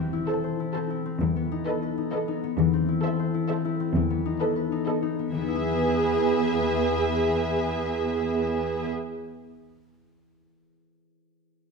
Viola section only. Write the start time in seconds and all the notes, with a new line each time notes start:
0.28 A4
0.75 A4
1.67 A4
2.13 A4
3.04 A4
3.50 A4
4.42 A4
4.88 A4
5.35 G#4